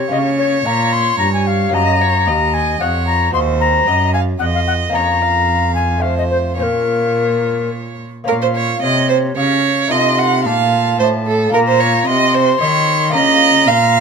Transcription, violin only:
Already playing: C#5
1.74 D#5
2.01 C#5
2.28 D#5
2.81 C#5
3.33 C5
3.87 D#5
4.14 F5
4.41 D#5
4.95 C#5
5.22 F5
6.03 C5
6.59 C#5
8.28 A#4
8.42 C5
8.55 C#5
8.82 D#5
9.09 C5
9.36 C#5
9.91 D#5
10.18 F#5
10.45 F5
10.99 C5
11.26 A4
11.54 A#4
11.68 C5
11.80 C#5
12.07 D#5
12.34 C5
12.61 C#5
13.14 D#5
13.67 F5

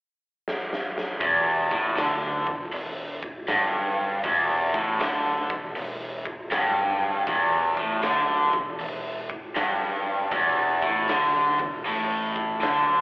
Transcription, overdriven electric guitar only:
1.21 E2
1.71 A2
1.96 D3
2.47 E2
2.73 E2
3.48 G2
4.24 E2
4.74 A2
5.00 D3
5.51 E2
5.76 E2
6.51 G2
7.27 E2
7.78 A2
8.03 D3
8.54 E2
8.80 E2
9.56 G2
10.32 E2
10.83 A2
11.10 D3
11.59 E2
11.85 A2
12.61 D3

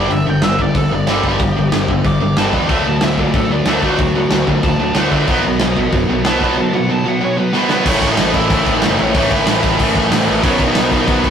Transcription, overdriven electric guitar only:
Already playing: D3 G3
0.11 G2 D3
0.27 G2 D3
0.42 G2 D3
0.59 G2 D3
0.75 G2 D3
0.91 G2 D3
1.07 G2 D3 G3
1.24 G2 D3 G3
1.40 G2 D3
1.56 G2 D3
1.72 G2 D3
1.89 G2 D3
2.04 G2 D3
2.20 G2 D3
2.37 G2 D3 G3
2.53 G2 D3 G3
2.69 D3 F#3 A3
2.86 D3 F#3
3.02 D3 F#3
3.19 D3 F#3
3.34 D3 F#3
3.51 D3 F#3
3.67 D3 F#3 A3
3.83 D3 F#3 A3
4.00 D3 F#3
4.16 D3 F#3
4.31 D3 F#3
4.47 D3 F#3
4.64 D3 F#3
4.80 D3 F#3
4.95 D3 F#3 A3
5.11 D3 F#3 A3
5.28 B2 F#3 B3
5.45 B2 F#3
5.61 B2 F#3
5.77 B2 F#3
5.93 B2 F#3
6.09 B2 F#3
6.25 B2 F#3 B3
6.41 B2 F#3 B3
6.57 B2 F#3
6.73 B2 F#3
6.90 B2 F#3
7.06 B2 F#3
7.21 B2 F#3
7.37 B2 F#3
7.53 B2 F#3 B3
7.70 B2 F#3 B3
7.85 A2 E3 A3 C#4 E4
9.14 A2 E3 A3 C#4 E4
10.43 B2 D#3 F#3 B3 D#4

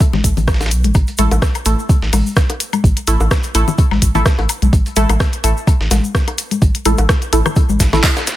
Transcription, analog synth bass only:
0.13 A1
0.24 A1
0.37 A1
0.71 B1
0.84 A1
0.95 A1
1.19 A1
1.31 A1
1.66 A1
2.02 A1
2.13 A1
2.84 A1
3.08 A1
3.20 A1
3.55 A1
3.91 A1
4.02 A1
4.15 A1
4.39 A1
4.62 B1
4.73 A1
4.97 A1
5.10 A1
5.44 A1
5.80 A1
5.91 A1
6.62 A1
6.86 A1
6.99 A1
7.33 A1
7.69 A1
7.80 A1
7.93 A1

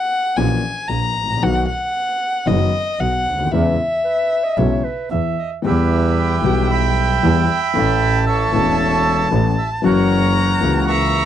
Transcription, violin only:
Already playing: F#5
0.37 G#5
0.89 A#5
1.43 F#5
1.68 F#5
2.47 D#5
3.00 F#5
3.52 E5
5.65 G5
7.75 A5
9.85 A#5
10.89 A#5

